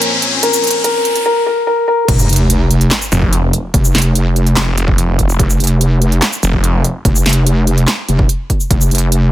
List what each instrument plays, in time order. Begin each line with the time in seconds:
Already playing: string section A#2 F3 C4 C#4, felt piano A#4, riser
0.02 closed hi-hat
0.22 closed hi-hat
0.43 felt piano A#4, closed hi-hat
0.53 shaker
0.64 closed hi-hat
0.67 closed hi-hat
0.71 closed hi-hat
0.84 felt piano A#4, closed hi-hat
1.05 closed hi-hat
1.16 closed hi-hat
1.26 felt piano A#4
1.46 felt piano A#4
1.67 felt piano A#4
1.88 felt piano A#4
2.08 wobble bass F1, kick, closed hi-hat, crash, sub drop
2.19 shaker
2.29 wobble bass F1, closed hi-hat
2.33 closed hi-hat
2.36 closed hi-hat
2.50 closed hi-hat
2.71 closed hi-hat
2.81 closed hi-hat
2.91 snare, clap, closed hi-hat
3.02 shaker
3.12 detuned saw bass F1, closed hi-hat, shaker
3.22 kick
3.33 closed hi-hat
3.53 closed hi-hat
3.74 wobble bass F1, kick, closed hi-hat
3.85 shaker
3.95 wobble bass F1, snare, closed hi-hat
3.98 closed hi-hat
4.02 closed hi-hat
4.15 closed hi-hat
4.36 closed hi-hat
4.47 closed hi-hat
4.57 detuned saw bass F1, snare, clap, closed hi-hat
4.78 closed hi-hat
4.88 kick
4.98 closed hi-hat
5.19 kick, closed hi-hat
5.29 shaker
5.39 wobble bass F1, kick, closed hi-hat
5.50 shaker
5.60 wobble bass F1, closed hi-hat
5.64 closed hi-hat
5.67 closed hi-hat
5.81 closed hi-hat
6.02 closed hi-hat
6.12 closed hi-hat
6.22 snare, clap, closed hi-hat
6.33 shaker
6.43 detuned saw bass F1, closed hi-hat, shaker
6.53 kick
6.64 closed hi-hat
6.84 closed hi-hat
7.05 wobble bass F1, kick, closed hi-hat
7.16 shaker
7.26 wobble bass F1, snare, closed hi-hat
7.29 closed hi-hat
7.33 closed hi-hat
7.47 closed hi-hat
7.67 closed hi-hat
7.78 closed hi-hat
7.88 snare, clap, closed hi-hat
8.08 wobble bass F1, closed hi-hat
8.19 kick
8.29 closed hi-hat
8.50 kick, closed hi-hat
8.60 shaker
8.71 wobble bass F1, kick, closed hi-hat
8.81 shaker
8.91 wobble bass F1, closed hi-hat
8.95 closed hi-hat
8.98 closed hi-hat
9.12 closed hi-hat